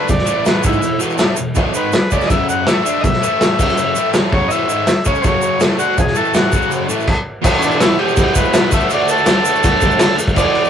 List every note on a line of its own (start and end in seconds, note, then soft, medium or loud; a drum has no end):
0.08 0.23 E2 medium
0.08 0.23 B2 medium
0.08 0.45 D5 medium
0.08 kick loud
0.08 crash medium
0.08 shaker medium
0.19 snare soft
0.26 0.62 A2 medium
0.26 0.63 E3 loud
0.26 0.63 A3 loud
0.26 shaker medium
0.45 0.64 B4 medium
0.45 snare loud
0.45 crash medium
0.45 shaker medium
0.62 0.81 G#2 medium
0.62 0.81 D#3 loud
0.62 0.82 G#3 loud
0.62 kick loud
0.62 shaker medium
0.66 1.01 E4 medium
0.73 shaker soft
0.81 0.96 E2 medium
0.81 0.97 B2 medium
0.81 crash medium
0.81 shaker medium
0.99 1.18 E2 medium
0.99 1.17 B2 loud
0.99 1.18 E3 loud
0.99 shaker loud
1.10 shaker soft
1.17 1.36 A2 medium
1.17 1.37 E3 loud
1.17 1.37 A3 loud
1.17 snare loud
1.17 crash medium
1.17 shaker medium
1.36 1.52 E2 medium
1.36 1.52 B2 medium
1.36 shaker loud
1.55 1.73 E2 medium
1.55 1.74 B2 loud
1.55 1.74 E3 medium
1.55 kick loud
1.55 crash medium
1.55 shaker medium
1.74 1.92 G#2 medium
1.74 1.93 D#3 loud
1.74 1.93 G#3 loud
1.74 1.93 B4 medium
1.74 shaker medium
1.93 2.11 B4 medium
1.93 muted overdriven electric guitar stroke medium
1.93 snare loud
1.93 crash medium
1.93 shaker medium
2.11 2.29 C#3 medium
2.11 2.30 G#3 medium
2.11 2.30 C#4 loud
2.11 2.30 D5 medium
2.11 kick medium
2.11 shaker medium
2.21 snare soft
2.21 shaker soft
2.27 2.66 F#2 medium
2.27 2.65 C#3 loud
2.27 2.66 F#3 medium
2.27 2.29 D#5 medium
2.27 2.48 E5 loud
2.27 kick loud
2.27 crash medium
2.27 shaker medium
2.49 2.67 F#5 medium
2.49 shaker medium
2.66 2.84 A2 loud
2.66 2.84 E3 medium
2.66 2.83 A3 loud
2.66 3.03 E5 medium
2.66 snare loud
2.66 crash medium
2.66 shaker medium
2.84 3.02 D3 medium
2.84 3.03 A3 loud
2.84 3.03 D4 loud
2.84 shaker medium
3.01 3.18 E2 medium
3.01 3.18 B2 medium
3.01 3.03 D#5 medium
3.01 kick loud
3.01 crash medium
3.01 shaker medium
3.05 4.11 E5 loud
3.13 snare soft
3.21 3.57 A2 medium
3.21 3.58 E3 medium
3.21 3.58 A3 loud
3.21 shaker medium
3.41 snare loud
3.41 crash medium
3.41 shaker medium
3.58 3.95 F#2 loud
3.58 3.95 C#3 loud
3.58 3.96 F#3 loud
3.58 kick loud
3.58 crash medium
3.58 shaker medium
3.68 snare soft
3.68 shaker soft
3.78 crash medium
3.78 shaker medium
3.95 4.32 A2 medium
3.95 4.32 E3 medium
3.95 4.33 A3 loud
3.95 shaker medium
4.14 snare loud
4.14 crash medium
4.14 shaker medium
4.32 4.50 F#2 medium
4.32 4.50 C#3 medium
4.32 4.51 F#3 loud
4.32 4.51 C#5 loud
4.32 kick loud
4.48 4.68 E2 loud
4.48 4.69 B2 loud
4.48 4.50 D#5 medium
4.48 5.05 E5 loud
4.48 crash medium
4.48 shaker medium
4.52 4.69 E3 loud
4.69 4.87 G#2 medium
4.69 4.87 D#3 loud
4.69 4.88 G#3 loud
4.69 shaker loud
4.87 muted overdriven electric guitar stroke medium
4.87 snare loud
4.87 crash medium
4.87 shaker medium
5.05 5.23 C#3 loud
5.05 5.24 G#3 loud
5.05 5.25 C#4 loud
5.05 5.24 C#5 medium
5.05 kick medium
5.05 shaker medium
5.15 shaker soft
5.22 5.60 F#2 loud
5.22 5.59 C#3 loud
5.22 5.61 F#3 loud
5.22 5.24 C5 medium
5.22 kick loud
5.22 crash medium
5.22 shaker medium
5.27 5.61 C#5 loud
5.42 shaker medium
5.60 5.78 A2 medium
5.60 5.79 E3 loud
5.60 5.78 A3 loud
5.60 snare loud
5.60 crash medium
5.60 shaker medium
5.78 5.97 D3 medium
5.78 5.97 A3 loud
5.78 5.97 D4 loud
5.78 5.97 F#4 loud
5.78 shaker medium
5.97 6.12 E2 medium
5.97 6.12 B2 medium
5.97 6.17 G#4 loud
5.97 kick loud
5.97 crash medium
5.97 shaker medium
6.07 snare soft
6.15 6.52 A2 medium
6.15 6.52 E3 medium
6.15 6.53 A3 loud
6.15 6.34 A4 medium
6.15 shaker medium
6.25 shaker soft
6.34 6.71 F#4 medium
6.34 snare loud
6.34 crash medium
6.34 shaker medium
6.52 6.89 F#2 medium
6.52 6.87 C#3 loud
6.52 6.88 F#3 loud
6.52 kick loud
6.52 shaker loud
6.71 crash medium
6.71 shaker medium
6.88 7.06 A2 medium
6.88 7.07 E3 medium
6.88 7.07 A3 medium
6.88 shaker medium
7.00 shaker soft
7.07 kick loud
7.07 crash loud
7.42 7.97 E2 medium
7.42 7.98 B2 medium
7.42 7.98 E3 loud
7.42 7.99 G#3 loud
7.42 7.98 B3 loud
7.42 kick loud
7.42 crash loud
7.42 crash medium
7.42 shaker medium
7.46 7.97 E4 loud
7.59 7.61 C#4 medium
7.59 crash medium
7.59 shaker loud
7.64 7.81 D4 loud
7.71 shaker soft
7.80 7.99 E4 loud
7.80 snare loud
7.80 crash medium
7.80 shaker medium
7.99 8.73 B2 medium
7.99 8.70 E3 medium
7.99 8.72 G#3 medium
7.99 8.72 B3 medium
7.99 8.71 E4 loud
7.99 8.35 G4 medium
7.99 crash medium
8.03 8.73 E2 medium
8.08 shaker soft
8.17 kick loud
8.17 crash medium
8.17 shaker medium
8.35 8.72 B4 loud
8.35 kick medium
8.35 crash medium
8.35 shaker medium
8.54 snare loud
8.54 crash medium
8.54 shaker medium
8.71 9.24 D3 medium
8.71 9.26 A3 loud
8.71 9.27 D4 loud
8.71 8.91 E5 medium
8.71 kick loud
8.71 snare soft
8.71 crash medium
8.71 shaker loud
8.75 9.28 F#4 loud
8.80 shaker soft
8.90 9.10 D5 loud
8.90 crash medium
8.90 shaker medium
9.08 10.17 A4 loud
9.08 crash medium
9.08 shaker medium
9.18 shaker soft
9.26 10.17 D3 medium
9.26 10.18 A3 medium
9.26 10.18 D4 medium
9.26 10.19 F#4 medium
9.26 snare loud
9.26 crash medium
9.26 shaker medium
9.45 crash medium
9.45 shaker loud
9.55 shaker soft
9.63 kick loud
9.63 crash medium
9.63 shaker medium
9.81 kick medium
9.81 crash medium
9.81 shaker medium
9.91 shaker soft
9.99 snare loud
9.99 crash loud
9.99 shaker medium
10.18 snare soft
10.18 crash medium
10.18 shaker loud
10.28 kick medium
10.28 shaker soft
10.35 10.70 E2 loud
10.35 10.70 B2 medium
10.35 10.70 E3 loud
10.35 10.70 G#3 loud
10.35 10.70 B3 loud
10.35 10.70 G#4 loud
10.35 10.70 D5 loud
10.35 kick loud
10.35 crash medium
10.35 shaker medium
10.55 crash medium
10.65 shaker soft